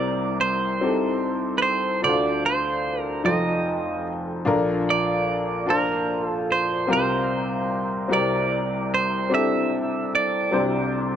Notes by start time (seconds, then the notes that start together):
Already playing: C2 C3 C4 E4 G4 A#4 D5
0.41 C5
0.81 C4 D#4 G4 A4
0.89 E4
1.58 B4
1.62 C5
2.02 D2 D3 D4 E4 A4 C5 D5
2.09 F4
2.46 C5
3.01 A#4
3.24 F1 F2 D#4 F4 A4 C5 D#5
4.45 A#1 A#2 D4 F4 A4 A#4
4.90 D5
5.66 D4 F4 C5 A5
5.70 A#4
6.26 A4
6.52 C5
6.87 C2 C3 C4 F4 G4 A#4
6.93 C5
8.08 C2 C3 C4 E4 G4 A#4
8.13 D5
8.94 C5
9.30 C4 D4 G4 A4
9.34 E4 E5
10.15 D5
10.51 C2 C3 C4 D4 G4 C5
10.59 E4